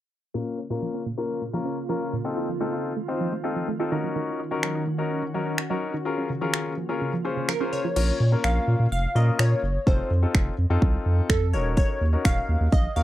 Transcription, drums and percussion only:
4.63 finger snap
5.58 finger snap
6.54 finger snap
7.49 finger snap
7.96 crash
8.44 finger snap
9.39 finger snap
9.87 kick
10.35 finger snap, kick
10.82 kick
11.30 finger snap, kick
11.77 kick
12.25 finger snap, kick
12.72 kick

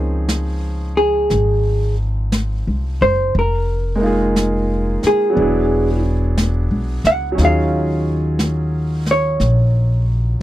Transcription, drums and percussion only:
0.29 brush sweep, snare, hi-hat pedal
1.30 brush sweep, snare
2.32 brush sweep, snare, hi-hat pedal
3.34 brush sweep
4.36 brush sweep, snare, hi-hat pedal
5.03 snare
5.36 brush sweep
6.37 brush sweep, snare, hi-hat pedal
7.05 snare
7.38 brush sweep, snare
8.39 brush sweep, snare, hi-hat pedal
9.06 snare
9.40 brush sweep, snare

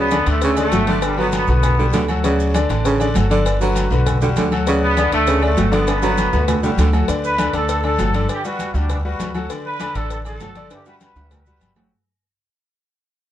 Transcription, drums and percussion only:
0.11 cowbell, high conga, low timbale, low agogo, short guiro, maracas
0.26 cowbell, low agogo, short guiro, maracas
0.42 cowbell, high conga, long guiro, maracas
0.56 high conga, low agogo, maracas
0.72 cowbell, high conga, low timbale, low agogo, short guiro, maracas
0.87 cowbell, high conga, short guiro, maracas
1.02 cowbell, high conga, low agogo, long guiro, maracas
1.18 high conga, low agogo
1.32 cowbell, high conga, low timbale, low agogo, short guiro, maracas
1.47 high conga, short guiro, maracas
1.63 cowbell, high conga, low conga, low agogo, long guiro, maracas
1.79 high conga
1.93 cowbell, high conga, low timbale, low agogo, short guiro, maracas
2.08 high conga, low agogo, short guiro, maracas
2.24 cowbell, high conga, low agogo, maracas
2.40 high conga, maracas
2.54 cowbell, high conga, low timbale, low agogo, short guiro, maracas
2.69 cowbell, low agogo, short guiro, maracas
2.85 cowbell, high conga, long guiro, maracas
3.00 high conga, low agogo, maracas
3.15 cowbell, high conga, low timbale, low agogo, short guiro, maracas
3.30 cowbell, high conga, short guiro, maracas
3.45 cowbell, high conga, low agogo, long guiro, maracas
3.61 high conga, low agogo, maracas
3.75 cowbell, high conga, low timbale, low agogo, short guiro, maracas
3.90 high conga, short guiro, maracas
4.06 cowbell, high conga, low conga, low agogo, long guiro, maracas
4.21 high conga, low conga, maracas
4.36 cowbell, high conga, low timbale, low agogo, short guiro, maracas
4.52 high conga, low agogo, short guiro, maracas
4.66 cowbell, high conga, low agogo, long guiro, maracas
4.82 high conga
4.97 cowbell, high conga, low timbale, low agogo, short guiro, maracas
5.12 cowbell, low agogo, short guiro, maracas
5.27 cowbell, high conga, maracas
5.43 high conga, low agogo
5.57 cowbell, high conga, low timbale, low agogo, short guiro, maracas
5.72 cowbell, high conga, short guiro, maracas
5.87 cowbell, high timbale, low agogo, long guiro, maracas
6.02 high timbale, low agogo, maracas
6.18 cowbell, high conga, low agogo, short guiro, maracas
6.33 high conga, high timbale, short guiro, maracas
6.48 cowbell, high conga, low conga, low timbale, low agogo, long guiro, maracas
6.63 high conga, low conga, low timbale, maracas
6.78 cowbell, high conga, low timbale, low agogo, short guiro, maracas
6.93 high conga, low timbale, low agogo, short guiro, maracas
7.08 cowbell, high conga, low agogo, long guiro, maracas
7.24 high conga, maracas
7.38 cowbell, high conga, low timbale, low agogo, short guiro, maracas
7.53 cowbell, low agogo, short guiro, maracas
7.69 cowbell, high conga, long guiro, maracas
7.84 high conga, low agogo
7.98 cowbell, high conga, low timbale, low agogo, short guiro, maracas
8.14 cowbell, high conga, short guiro, maracas
8.29 cowbell, high conga, low agogo, long guiro, maracas
8.44 high conga, low agogo, maracas
8.59 cowbell, high conga, low timbale, low agogo, short guiro, maracas
8.74 high conga, short guiro, maracas
8.89 cowbell, high conga, low conga, low agogo, long guiro, maracas
9.05 high conga
9.20 cowbell, high conga, low timbale, low agogo, short guiro, maracas
9.35 high conga, low agogo, short guiro, maracas
9.50 cowbell, high conga, low agogo, long guiro, maracas
9.65 high conga
9.80 cowbell, high conga, low timbale, low agogo, short guiro, maracas
9.95 cowbell, low agogo, short guiro, maracas
10.10 cowbell, high conga, long guiro, maracas
10.25 high conga, low agogo, maracas
10.40 cowbell, high conga, low timbale, low agogo, short guiro, maracas
10.55 cowbell, high conga, short guiro, maracas
10.70 cowbell, high conga, high timbale, low agogo, long guiro, maracas
10.86 high conga, high timbale, low agogo, maracas
11.01 cowbell, high conga, high timbale, low agogo, short guiro, maracas
11.16 high timbale, short guiro, maracas
11.31 cowbell, high conga, low conga, low timbale, low agogo, long guiro, maracas
11.46 high conga, low conga, maracas
11.61 cowbell, high conga, low agogo, short guiro, maracas
11.76 high conga, low timbale, low agogo, short guiro, maracas

